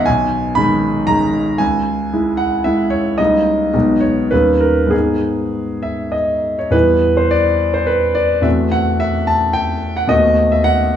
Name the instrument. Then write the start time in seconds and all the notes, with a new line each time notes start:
grand piano
0.06 B1 G#5
0.55 D#3 G#3 D#4 B5
1.07 D#3 G#3 D#4 A#5
1.58 C#2 G#5
2.13 G#3 E4
2.37 F#5
2.64 G#3 E4 E5
2.90 C#5
3.18 C#2 G3 A#3 D#4 D#5
3.74 B1 G#3 B3 D#4
4.01 C#5
4.31 D#2 G3 C#4 D#4 B4
4.60 A#4
4.87 G#2 G#3 B3 D#4 G#4
5.83 E5
6.12 D#5
6.59 C#5
6.70 E2 G3 B3 E4 B4
7.17 C5
7.31 D5
7.74 C5
7.87 B4
8.15 D5
8.41 E2 A3 C4 F#4 E5
8.72 F#5
9.00 E5
9.27 A5
9.53 G5
9.97 F#5
10.07 D#2 A3 B3 F#4 D#5
10.52 E5
10.64 F#5